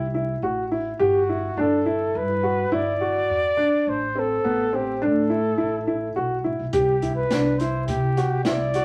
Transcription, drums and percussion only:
6.73 kick loud
6.73 closed hi-hat medium
7.02 kick medium
7.02 closed hi-hat medium
7.31 snare loud
7.31 closed hi-hat medium
7.60 snare soft
7.60 closed hi-hat medium
7.88 kick medium
7.88 closed hi-hat medium
8.17 snare soft
8.17 closed hi-hat medium
8.45 snare loud
8.45 closed hi-hat medium
8.74 snare soft
8.74 closed hi-hat medium

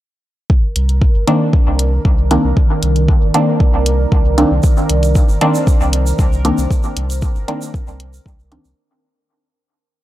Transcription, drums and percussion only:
0.50 kick loud
0.76 closed hi-hat medium
0.89 closed hi-hat soft
1.02 kick loud
1.28 closed hi-hat medium
1.53 kick loud
1.79 closed hi-hat medium
2.05 kick loud
2.31 closed hi-hat medium
2.57 kick loud
2.83 closed hi-hat medium
2.96 closed hi-hat soft
3.08 kick loud
3.34 closed hi-hat medium
3.60 kick loud
3.86 closed hi-hat medium
4.12 kick loud
4.38 closed hi-hat medium
4.63 kick loud
4.63 shaker medium
4.77 shaker soft
4.89 closed hi-hat medium
5.03 closed hi-hat soft
5.03 shaker medium
5.15 kick loud
5.15 shaker medium
5.29 shaker soft
5.41 closed hi-hat medium
5.55 shaker medium
5.67 kick loud
5.67 shaker medium
5.81 shaker soft
5.93 closed hi-hat medium
6.07 shaker medium
6.19 kick loud
6.19 shaker medium
6.33 shaker soft
6.45 closed hi-hat medium
6.58 shaker medium
6.71 kick loud
6.71 shaker medium
6.83 shaker soft
6.97 closed hi-hat medium
7.10 closed hi-hat soft
7.10 shaker medium
7.22 kick loud
7.22 shaker medium
7.36 shaker soft
7.48 closed hi-hat medium
7.62 shaker medium
7.74 kick loud
7.74 shaker medium
7.87 shaker soft
8.00 closed hi-hat medium
8.13 shaker medium
8.26 kick loud
8.26 shaker medium
8.40 shaker soft
8.52 closed hi-hat medium
8.65 shaker medium

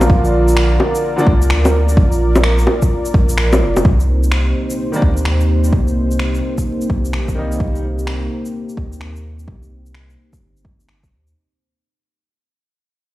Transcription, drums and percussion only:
0.01 low bongo medium
0.01 shaker medium
0.10 kick loud
0.25 shaker soft
0.48 shaker medium
0.57 finger snap loud
0.80 low bongo medium
0.95 shaker medium
1.19 shaker soft
1.27 kick medium
1.42 shaker medium
1.50 finger snap loud
1.65 low bongo medium
1.65 shaker soft
1.89 shaker medium
1.97 kick loud
2.12 shaker soft
2.35 low bongo medium
2.35 shaker medium
2.44 finger snap loud
2.59 shaker soft
2.67 low bongo medium
2.82 kick medium
2.82 shaker medium
3.05 shaker soft
3.14 kick loud
3.29 shaker medium
3.38 finger snap loud
3.53 low bongo medium
3.53 shaker soft
3.77 low bongo medium
3.77 shaker medium
3.85 kick loud
4.00 shaker soft
4.23 shaker medium
4.32 finger snap loud
4.70 shaker medium
4.94 shaker soft
5.02 kick loud
5.17 shaker medium
5.25 finger snap loud
5.41 shaker soft
5.64 shaker medium
5.72 kick loud
5.88 shaker soft
6.11 shaker medium
6.19 finger snap loud
6.35 shaker soft
6.58 kick medium
6.58 shaker medium
6.81 shaker soft
6.90 kick loud
7.05 shaker medium
7.13 finger snap loud
7.28 kick medium
7.28 shaker soft
7.52 shaker medium
7.60 kick loud
7.75 shaker soft
7.99 shaker medium
8.07 finger snap loud
8.45 shaker medium
8.69 shaker soft
8.77 kick loud
8.93 shaker medium
9.01 finger snap loud
9.16 shaker soft
9.39 shaker medium
9.48 kick loud
9.63 shaker soft
9.86 shaker soft
9.95 finger snap loud
10.10 shaker soft
10.33 kick medium
10.33 shaker soft
10.57 shaker soft
10.65 kick loud
10.80 shaker soft
10.89 finger snap loud
11.03 kick medium
11.03 shaker soft
11.27 shaker soft

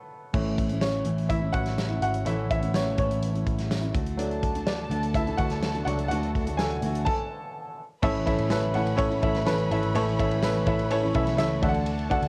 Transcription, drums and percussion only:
0.34 kick loud
0.34 crash medium
0.58 kick medium
0.58 closed hi-hat medium
0.69 closed hi-hat medium
0.81 snare loud
0.81 tambourine medium
0.93 closed hi-hat soft
1.05 closed hi-hat medium
1.18 closed hi-hat medium
1.30 kick medium
1.30 closed hi-hat medium
1.54 kick medium
1.54 closed hi-hat medium
1.66 snare soft
1.66 closed hi-hat medium
1.78 snare medium
1.78 tambourine medium
2.02 closed hi-hat medium
2.14 closed hi-hat soft
2.26 closed hi-hat medium
2.50 kick medium
2.50 closed hi-hat medium
2.63 closed hi-hat medium
2.74 snare loud
2.74 tambourine medium
2.98 kick medium
2.98 closed hi-hat medium
3.11 closed hi-hat medium
3.23 closed hi-hat medium
3.35 closed hi-hat soft
3.47 kick medium
3.47 closed hi-hat medium
3.59 snare soft
3.59 closed hi-hat soft
3.71 snare loud
3.71 tambourine medium
3.83 closed hi-hat soft
3.94 kick loud
3.94 closed hi-hat medium
4.06 closed hi-hat soft
4.19 closed hi-hat medium
4.31 closed hi-hat soft
4.43 kick medium
4.43 closed hi-hat medium
4.55 closed hi-hat medium
4.67 snare loud
4.67 tambourine medium
4.91 closed hi-hat medium
5.03 closed hi-hat soft
5.14 kick medium
5.14 closed hi-hat medium
5.27 closed hi-hat soft
5.38 kick medium
5.38 closed hi-hat medium
5.50 snare soft
5.50 closed hi-hat soft
5.63 snare loud
5.63 tambourine medium
5.75 closed hi-hat soft
5.88 closed hi-hat medium
5.99 closed hi-hat soft
6.11 closed hi-hat medium
6.23 closed hi-hat soft
6.35 kick medium
6.35 closed hi-hat medium
6.47 closed hi-hat medium
6.59 snare loud
6.59 tambourine medium
6.70 closed hi-hat soft
6.82 closed hi-hat medium
6.95 closed hi-hat medium
7.06 kick loud
7.06 crash medium
8.03 kick loud
8.03 crash medium
8.27 kick medium
8.27 ride medium
8.39 ride soft
8.50 snare loud
8.50 ride medium
8.50 tambourine medium
8.74 ride medium
8.87 ride soft
8.99 kick medium
8.99 ride medium
9.12 ride soft
9.22 kick loud
9.22 ride soft
9.35 snare soft
9.35 ride soft
9.46 snare medium
9.46 ride medium
9.46 tambourine medium
9.59 ride soft
9.71 ride medium
9.83 ride soft
9.95 ride medium
10.19 kick medium
10.19 ride medium
10.31 ride soft
10.42 snare loud
10.42 ride medium
10.42 tambourine medium
10.54 ride soft
10.66 kick loud
10.66 ride medium
10.79 ride soft
10.90 ride medium
11.14 kick medium
11.14 ride soft
11.27 snare soft
11.27 ride soft
11.38 snare loud
11.38 ride medium
11.38 tambourine medium
11.63 kick loud
11.63 ride medium
11.74 ride soft
11.86 ride medium
11.99 ride soft
12.11 kick medium
12.11 ride medium
12.22 ride soft

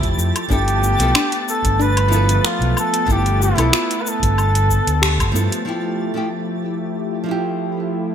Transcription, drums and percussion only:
0.03 kick loud
0.03 closed hi-hat soft
0.19 cabasa medium
0.36 closed hi-hat medium
0.36 cabasa soft
0.36 low woodblock medium
0.50 kick loud
0.50 cabasa soft
0.68 closed hi-hat soft
0.68 cabasa soft
0.83 cabasa medium
1.00 closed hi-hat medium
1.00 cabasa soft
1.15 finger snap loud
1.15 cabasa soft
1.15 low woodblock medium
1.32 closed hi-hat soft
1.48 cabasa medium
1.64 kick loud
1.64 closed hi-hat medium
1.64 cabasa soft
1.81 cabasa soft
1.97 closed hi-hat soft
1.97 low woodblock medium
2.12 cabasa medium
2.29 closed hi-hat medium
2.29 cabasa soft
2.45 finger snap loud
2.45 cabasa soft
2.62 closed hi-hat soft
2.77 cabasa medium
2.77 low woodblock medium
2.94 closed hi-hat medium
2.94 cabasa soft
3.08 kick loud
3.08 cabasa soft
3.26 closed hi-hat soft
3.26 cabasa soft
3.42 cabasa medium
3.58 closed hi-hat medium
3.58 cabasa soft
3.58 low woodblock medium
3.73 finger snap loud
3.73 cabasa soft
3.91 closed hi-hat soft
3.91 cabasa soft
4.06 cabasa medium
4.22 kick loud
4.22 closed hi-hat medium
4.22 cabasa soft
4.38 cabasa soft
4.38 low woodblock medium
4.55 closed hi-hat soft
4.55 cabasa soft
4.69 kick medium
4.69 cabasa medium
4.87 closed hi-hat medium
4.87 cabasa soft
5.03 finger snap loud
5.03 cabasa soft
5.19 kick loud
5.19 closed hi-hat soft
5.19 cabasa soft
5.19 low woodblock medium
5.36 cabasa medium
5.52 closed hi-hat medium
5.52 cabasa soft

